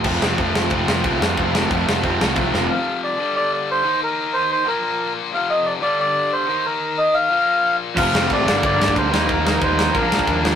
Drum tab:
CC |x---x---x---x---|x---x---x---x---|----------------|----------------|
RD |----------------|----------------|----------------|----------------|
SD |--o---o---o---o-|--o---o---o---o-|----------------|----------------|
BD |o---o---o---o---|o---o---o---o---|----------------|----------------|

CC |----------------|----------------|x---------------|----------------|
RD |----------------|----------------|----x---x---x---|x---x---x---x---|
SD |----------------|----------------|--o---o---o---o-|--o---o---o---o-|
BD |----------------|----------------|o---o---o--oo---|o---o---o--oo---|